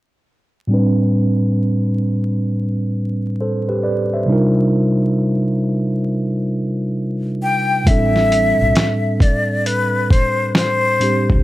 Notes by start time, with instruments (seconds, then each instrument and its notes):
0.67 tine electric piano A2 G3 C4
0.72 tine electric piano D4 B4
3.41 tine electric piano A4 C5
3.69 tine electric piano G4 B4
3.83 tine electric piano B4 D5
4.14 tine electric piano C5 E5
4.26 tine electric piano C3 G3 D4 D#4
4.31 tine electric piano F4 A#4
7.43 flute G5
7.84 upright bass A1, tine electric piano A2 G3 C4, flute E5, kick, closed hi-hat
7.89 tine electric piano D4 A4
8.16 snare
8.32 closed hi-hat
8.61 upright bass B1
8.75 snare, closed hi-hat
9.20 flute D5, kick, closed hi-hat
9.66 flute B4, closed hi-hat
10.11 flute C5, kick, closed hi-hat
10.55 flute C5, snare, closed hi-hat
11.00 tine electric piano A2 G3 C4 D4 G4, closed hi-hat
11.30 upright bass C#2, kick